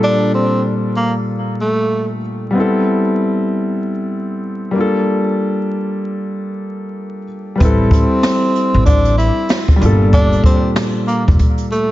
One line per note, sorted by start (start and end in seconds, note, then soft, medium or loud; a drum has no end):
0.00 2.18 A#2 medium
0.00 2.17 G3 medium
0.00 2.19 D4 medium
0.00 0.31 D4 loud
0.00 2.20 F4 medium
0.00 2.22 A4 medium
0.35 0.63 C4 medium
0.96 1.14 A#3 medium
1.61 2.08 A3 medium
2.51 4.70 G3 medium
2.51 4.71 B3 medium
2.55 4.72 C4 medium
2.55 4.73 E4 medium
2.60 4.75 A4 medium
4.71 7.22 G3 medium
4.71 7.23 A#3 medium
4.76 7.25 D4 medium
4.76 7.26 F4 medium
4.81 7.27 A4 medium
7.55 9.75 G3 medium
7.55 9.76 B4 medium
7.60 8.04 A1 loud
7.60 9.77 C4 medium
7.60 9.78 E4 medium
7.60 kick loud
7.60 closed hi-hat medium
7.65 9.80 A4 medium
7.91 8.83 C4 medium
7.91 kick loud
7.91 closed hi-hat medium
8.23 snare loud
8.23 closed hi-hat medium
8.55 closed hi-hat medium
8.74 9.28 A1 loud
8.86 9.15 D4 loud
8.86 kick loud
8.86 closed hi-hat medium
9.05 closed hi-hat medium
9.18 9.66 E4 medium
9.18 closed hi-hat medium
9.49 snare loud
9.49 closed hi-hat medium
9.68 kick medium
9.76 11.91 A#2 medium
9.76 11.91 G3 medium
9.81 10.35 G1 loud
9.81 11.91 D4 medium
9.81 11.91 F4 medium
9.81 closed hi-hat medium
9.85 11.91 A4 medium
10.13 10.42 D4 loud
10.13 kick loud
10.13 closed hi-hat medium
10.32 closed hi-hat medium
10.44 10.73 C4 medium
10.44 kick loud
10.44 closed hi-hat medium
10.76 snare loud
10.76 closed hi-hat medium
11.07 11.25 A#3 medium
11.07 closed hi-hat medium
11.28 11.38 F1 medium
11.28 kick loud
11.39 kick loud
11.39 closed hi-hat medium
11.58 closed hi-hat medium
11.72 11.91 A3 medium
11.72 closed hi-hat medium